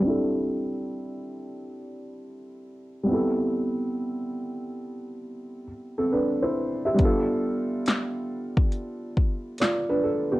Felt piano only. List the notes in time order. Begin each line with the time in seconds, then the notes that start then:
0.00 G3 C4
0.04 D4 E4
0.09 A4
3.04 G3 B3
3.09 C4 E4
3.14 A4
5.98 C4 A4
6.12 D4 B4
6.42 E4 C5
6.85 G4 E5
6.94 G3 B3
6.99 D4 F4
7.05 A4
9.60 F4 D5
9.89 D4 B4
10.03 A4
10.32 B3 G4